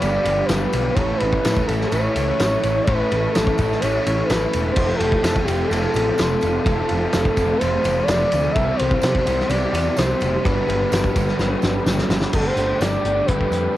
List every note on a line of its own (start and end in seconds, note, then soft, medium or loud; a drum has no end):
0.00 0.17 G1 loud
0.00 0.49 G2 loud
0.00 0.97 G2 medium
0.00 0.95 D3 medium
0.00 0.49 D3 loud
0.00 0.96 F3 medium
0.00 0.25 F3 loud
0.00 0.48 G3 medium
0.00 0.25 G3 loud
0.00 0.96 B3 medium
0.00 0.24 B3 loud
0.00 0.96 D4 medium
0.00 0.93 G4 medium
0.00 0.95 G4 medium
0.00 0.23 G4 loud
0.00 0.47 D5 loud
0.00 0.93 F5 medium
0.00 0.93 B5 loud
0.00 ride loud
0.00 tambourine medium
0.24 0.40 G1 medium
0.24 0.47 F3 medium
0.24 0.48 G3 medium
0.24 0.49 B3 medium
0.24 0.49 G4 medium
0.24 ride medium
0.24 tambourine medium
0.45 0.95 F3 medium
0.45 0.96 B4 loud
0.45 ride medium
0.45 tambourine loud
0.49 0.65 G1 medium
0.49 0.96 G2 medium
0.49 0.95 D3 medium
0.49 0.96 G3 medium
0.49 0.96 B3 medium
0.49 0.96 G4 medium
0.49 snare loud
0.53 0.97 G3 medium
0.73 0.88 B1 medium
0.73 ride medium
0.73 tambourine medium
0.94 1.12 A1 loud
0.94 1.71 A2 loud
0.94 1.91 A2 loud
0.94 1.70 E3 loud
0.94 1.42 E3 medium
0.94 1.69 A3 loud
0.94 1.44 A3 loud
0.94 8.51 A4 medium
0.94 1.19 C#5 loud
0.94 4.72 E5 medium
0.94 4.72 C#6 loud
0.94 kick loud
0.94 ride loud
0.94 tambourine soft
0.98 1.45 C#4 loud
0.98 1.69 C#4 loud
0.98 1.45 E4 loud
0.98 1.67 E4 loud
1.17 1.68 B4 loud
1.17 ride medium
1.21 1.36 A1 loud
1.33 kick medium
1.43 1.60 A2 medium
1.43 1.91 E3 medium
1.43 1.93 A3 medium
1.43 1.93 C#4 medium
1.43 1.93 E4 medium
1.43 snare loud
1.43 ride loud
1.43 tambourine loud
1.57 kick medium
1.66 1.84 A1 medium
1.66 2.87 A3 medium
1.66 2.86 C#4 medium
1.66 2.85 E4 medium
1.66 1.89 A4 medium
1.66 ride medium
1.66 tambourine medium
1.71 2.85 A2 medium
1.71 2.86 E3 medium
1.81 snare soft
1.87 2.86 C#5 loud
1.92 2.07 A1 medium
1.92 2.39 A2 loud
1.92 2.40 E3 loud
1.92 2.19 A3 loud
1.92 2.16 C#4 loud
1.92 2.15 E4 loud
1.92 ride loud
1.92 tambourine medium
2.16 2.31 C#2 medium
2.16 2.42 A3 medium
2.16 2.42 C#4 medium
2.16 2.43 E4 medium
2.16 ride medium
2.16 tambourine medium
2.40 2.55 A1 medium
2.40 2.85 A2 medium
2.40 2.87 E3 medium
2.40 2.88 A3 medium
2.40 2.90 A3 medium
2.40 2.88 C#4 medium
2.40 snare loud
2.40 ride medium
2.40 tambourine loud
2.44 2.88 E4 medium
2.63 2.79 A1 medium
2.63 ride medium
2.63 tambourine medium
2.84 3.02 A1 loud
2.84 3.56 A2 loud
2.84 3.58 A2 medium
2.84 3.57 E3 loud
2.84 3.34 E3 loud
2.84 3.60 A3 loud
2.84 3.34 B4 loud
2.84 kick loud
2.84 ride loud
2.88 3.36 A3 loud
2.88 3.36 C#4 loud
2.88 3.58 C#4 loud
2.88 3.57 E4 loud
2.88 3.36 E4 loud
2.88 tambourine soft
3.11 3.26 A1 medium
3.11 ride medium
3.11 tambourine soft
3.33 3.51 A1 medium
3.33 3.82 E3 medium
3.33 3.84 A3 medium
3.33 3.82 A4 loud
3.33 snare loud
3.33 ride loud
3.33 tambourine loud
3.37 3.84 C#4 medium
3.37 3.84 E4 loud
3.47 kick loud
3.58 3.73 A1 medium
3.58 4.77 E3 medium
3.58 4.79 A3 medium
3.58 4.76 C#4 medium
3.58 4.75 E4 medium
3.58 kick medium
3.58 ride medium
3.58 tambourine medium
3.62 4.77 A2 medium
3.72 snare soft
3.80 3.98 A1 medium
3.80 4.30 A2 medium
3.80 4.28 E3 medium
3.80 4.26 C#5 loud
3.80 ride loud
3.80 tambourine medium
3.84 4.10 A3 loud
3.84 4.08 C#4 loud
3.84 4.06 E4 loud
4.06 4.21 A1 medium
4.06 4.29 A3 medium
4.06 4.29 C#4 medium
4.06 4.30 E4 medium
4.06 ride medium
4.06 tambourine medium
4.25 4.74 A2 medium
4.25 4.71 B4 loud
4.29 4.45 A1 medium
4.29 4.75 E3 medium
4.29 4.77 A3 medium
4.29 7.82 A3 medium
4.29 4.76 C#4 medium
4.29 4.76 E4 medium
4.29 snare loud
4.29 ride loud
4.29 tambourine medium
4.53 4.69 E1 medium
4.53 ride medium
4.53 tambourine medium
4.72 4.97 C5 loud
4.76 4.92 F1 medium
4.76 5.69 F2 medium
4.76 5.49 F2 medium
4.76 5.47 C3 medium
4.76 5.23 F3 loud
4.76 5.47 F3 medium
4.76 5.23 A3 loud
4.76 5.47 A3 loud
4.76 5.24 C4 loud
4.76 5.46 C4 loud
4.76 5.25 F4 medium
4.76 8.53 F5 medium
4.76 6.65 C6 medium
4.76 kick loud
4.76 crash loud
4.76 tambourine soft
4.81 5.45 F4 medium
4.95 5.45 A4 loud
5.00 5.15 F1 medium
5.00 ride medium
5.00 tambourine soft
5.12 kick medium
5.23 5.39 F2 medium
5.23 5.70 F3 medium
5.23 5.70 A3 medium
5.23 5.71 C4 medium
5.23 5.71 F4 medium
5.23 snare loud
5.23 ride loud
5.23 tambourine loud
5.36 kick loud
5.44 5.62 F1 medium
5.44 6.65 A3 medium
5.44 6.67 C4 medium
5.44 6.64 F4 medium
5.44 5.68 G4 medium
5.48 6.63 F2 medium
5.48 6.64 C3 medium
5.48 6.65 F3 medium
5.48 ride medium
5.48 tambourine medium
5.67 5.86 F1 medium
5.67 6.18 F2 loud
5.67 6.61 A4 loud
5.71 6.19 C3 medium
5.71 5.97 F3 medium
5.71 5.96 A3 loud
5.71 5.96 C4 medium
5.71 5.94 F4 loud
5.71 ride loud
5.71 tambourine medium
5.94 6.10 A1 loud
5.94 6.16 F3 medium
5.94 6.17 A3 medium
5.94 6.19 C4 medium
5.94 6.19 F4 medium
5.94 ride medium
5.94 tambourine medium
6.17 6.34 F1 medium
6.17 6.64 F2 medium
6.17 6.65 C3 medium
6.17 6.65 F3 medium
6.17 6.66 F3 loud
6.17 6.66 A3 medium
6.17 6.67 C4 medium
6.17 6.67 F4 medium
6.17 snare loud
6.17 ride medium
6.17 tambourine loud
6.41 6.58 F1 medium
6.41 ride medium
6.41 tambourine medium
6.61 7.35 F2 medium
6.61 7.35 C3 loud
6.61 7.08 A4 loud
6.66 6.81 F1 loud
6.66 7.37 F2 medium
6.66 7.38 C3 loud
6.66 7.36 F3 loud
6.66 7.12 F3 loud
6.66 7.36 A3 loud
6.66 7.13 A3 loud
6.66 7.14 C4 loud
6.66 7.37 C4 loud
6.66 7.14 F4 loud
6.66 7.36 F4 loud
6.66 8.54 B5 loud
6.66 kick loud
6.66 ride loud
6.66 tambourine soft
6.89 7.06 F1 loud
6.89 ride medium
6.89 tambourine soft
7.08 7.59 A4 loud
7.13 7.29 F1 medium
7.13 7.61 F3 medium
7.13 7.61 A3 medium
7.13 7.61 C4 medium
7.13 7.62 F4 loud
7.13 snare loud
7.13 ride medium
7.13 tambourine loud
7.25 kick medium
7.37 7.52 F1 medium
7.37 8.56 F2 medium
7.37 8.53 C3 medium
7.37 8.55 F3 medium
7.37 8.55 A3 medium
7.37 8.54 C4 medium
7.37 8.54 F4 medium
7.37 kick medium
7.37 ride medium
7.37 tambourine medium
7.58 8.08 F2 medium
7.58 8.08 C3 medium
7.58 8.05 C5 loud
7.58 ride loud
7.62 7.77 F1 medium
7.62 7.87 F3 loud
7.62 7.86 A3 loud
7.62 7.85 C4 loud
7.62 7.84 F4 loud
7.62 tambourine medium
7.84 8.00 F1 loud
7.84 8.08 F3 medium
7.84 8.09 A3 medium
7.84 8.10 C4 medium
7.84 8.11 F4 medium
7.84 ride medium
7.84 tambourine medium
8.03 8.54 D5 loud
8.08 8.23 F1 medium
8.08 8.55 F2 medium
8.08 8.54 C3 medium
8.08 8.55 F3 medium
8.08 8.55 A3 medium
8.08 8.56 C4 medium
8.08 8.56 F4 medium
8.08 snare loud
8.08 ride loud
8.08 tambourine loud
8.12 8.56 F3 medium
8.32 8.48 D2 medium
8.32 ride medium
8.32 tambourine medium
8.52 8.71 C2 loud
8.52 9.25 C3 loud
8.52 9.27 C3 medium
8.52 8.78 E5 loud
8.52 kick loud
8.52 ride loud
8.52 tambourine soft
8.56 9.26 E3 loud
8.56 9.03 E3 medium
8.56 9.28 G3 loud
8.56 9.05 G3 loud
8.56 9.26 C4 loud
8.56 9.05 C4 loud
8.56 10.44 G4 medium
8.56 9.07 G4 loud
8.56 9.26 G4 loud
8.56 10.43 E5 medium
8.56 10.43 C6 medium
8.76 9.01 C5 loud
8.76 ride medium
8.76 tambourine soft
8.81 8.95 C2 medium
8.91 kick medium
9.01 9.18 C3 medium
9.01 9.50 E3 medium
9.01 9.52 G3 medium
9.01 9.50 C5 loud
9.01 snare loud
9.01 ride loud
9.01 tambourine loud
9.06 9.51 C4 medium
9.06 9.54 G4 medium
9.15 kick loud
9.26 9.42 C2 medium
9.26 10.43 C3 medium
9.26 10.44 E3 medium
9.26 10.45 G3 medium
9.26 10.44 C4 medium
9.26 10.46 G4 medium
9.26 ride medium
9.26 tambourine medium
9.40 snare soft
9.48 9.65 C2 medium
9.48 9.98 C3 loud
9.48 9.97 E3 medium
9.48 9.78 G3 loud
9.48 9.98 D5 loud
9.48 ride loud
9.48 tambourine medium
9.53 9.75 C4 loud
9.53 9.75 G4 loud
9.73 9.88 E2 medium
9.73 9.99 C4 medium
9.73 10.00 G4 medium
9.73 ride medium
9.73 tambourine medium
9.78 9.98 G3 medium
9.97 10.13 C2 medium
9.97 10.44 C3 medium
9.97 10.44 E3 medium
9.97 10.45 G3 medium
9.97 10.46 G3 medium
9.97 10.45 C4 medium
9.97 10.46 G4 medium
9.97 10.45 C5 loud
9.97 snare loud
9.97 ride loud
9.97 tambourine medium
10.02 10.46 C4 medium
10.20 10.37 F1 medium
10.20 ride medium
10.20 tambourine medium
10.43 10.60 G1 loud
10.43 11.14 G2 loud
10.43 11.16 G2 loud
10.43 11.14 D3 loud
10.43 11.16 D3 loud
10.43 11.14 G3 loud
10.43 10.89 G3 loud
10.43 10.90 B3 loud
10.43 11.15 B3 loud
10.43 10.91 D4 loud
10.43 11.15 D4 loud
10.43 11.15 G4 loud
10.43 10.93 G4 loud
10.43 12.33 A4 medium
10.43 11.86 B4 loud
10.43 12.33 G5 medium
10.43 12.33 B5 medium
10.43 kick loud
10.43 ride loud
10.43 tambourine soft
10.68 10.83 G1 loud
10.68 ride medium
10.68 tambourine soft
10.91 11.07 G1 medium
10.91 11.38 G3 medium
10.91 11.39 B3 medium
10.91 11.39 D4 medium
10.91 11.40 G4 medium
10.91 snare loud
10.91 ride loud
10.91 tambourine loud
11.04 kick medium
11.13 11.31 G1 medium
11.13 11.84 G3 medium
11.13 12.33 D4 medium
11.13 12.33 G4 loud
11.13 kick medium
11.13 ride medium
11.13 tambourine medium
11.18 12.35 G2 medium
11.18 12.34 D3 medium
11.18 12.32 G3 medium
11.18 12.34 B3 medium
11.28 snare soft
11.38 11.54 G1 medium
11.38 11.86 G2 loud
11.38 11.86 D3 loud
11.38 11.63 G3 loud
11.38 11.62 B3 loud
11.38 11.61 D4 loud
11.38 11.60 G4 loud
11.38 snare medium
11.38 tambourine medium
11.61 11.78 G1 medium
11.61 11.85 G3 medium
11.61 11.86 B3 medium
11.61 11.86 D4 medium
11.61 11.87 G4 medium
11.61 snare medium
11.61 tambourine medium
11.85 12.01 G1 medium
11.85 12.32 G2 medium
11.85 12.33 D3 medium
11.85 12.33 G3 medium
11.85 12.34 G3 loud
11.85 12.33 B3 medium
11.85 12.33 D4 medium
11.85 12.34 G4 medium
11.85 snare medium
11.85 tambourine medium
11.98 snare medium
12.09 12.25 G1 medium
12.09 snare loud
12.09 tambourine medium
12.21 snare medium
12.33 12.49 G1 medium
12.33 12.57 G2 medium
12.33 12.57 D3 medium
12.33 12.80 G3 medium
12.33 12.82 G3 medium
12.33 12.81 A3 loud
12.33 12.61 A3 loud
12.33 12.82 D4 loud
12.33 12.59 D4 medium
12.33 12.83 G4 loud
12.33 12.47 A4 loud
12.33 13.77 A4 medium
12.33 13.77 G5 medium
12.33 13.77 D6 medium
12.33 kick loud
12.33 crash loud
12.33 tambourine medium
12.37 12.58 G4 loud
12.46 12.81 C5 loud
12.56 12.72 G1 medium
12.56 12.81 G2 medium
12.56 12.80 D3 medium
12.56 12.82 G3 medium
12.56 12.83 D4 medium
12.56 12.84 G4 medium
12.56 closed hi-hat medium
12.56 tambourine medium
12.61 12.83 A3 medium
12.80 12.96 G1 medium
12.80 13.05 G2 medium
12.80 13.05 D3 loud
12.80 13.27 G3 medium
12.80 13.76 G3 medium
12.80 13.27 A3 medium
12.80 13.09 A3 medium
12.80 13.29 D4 medium
12.80 13.07 D4 medium
12.80 13.31 G4 medium
12.80 12.89 D5 loud
12.80 snare loud
12.80 closed hi-hat medium
12.80 tambourine loud
12.85 13.06 G4 medium
12.90 13.28 D5 loud
13.04 13.20 G1 medium
13.04 13.27 G2 medium
13.04 13.29 D3 medium
13.04 13.30 G3 medium
13.04 13.77 D4 medium
13.04 13.77 G4 medium
13.04 closed hi-hat medium
13.09 13.76 A3 medium
13.26 13.44 G1 medium
13.26 13.52 G2 loud
13.26 13.53 D3 loud
13.26 13.75 G3 medium
13.26 13.76 A3 loud
13.26 13.77 B4 loud
13.26 kick loud
13.26 closed hi-hat loud
13.30 13.77 D4 medium
13.30 13.77 G4 medium
13.41 kick medium
13.51 13.67 F2 medium
13.51 13.76 G2 medium
13.51 13.77 D3 medium
13.51 13.77 G3 medium
13.51 closed hi-hat medium
13.51 tambourine medium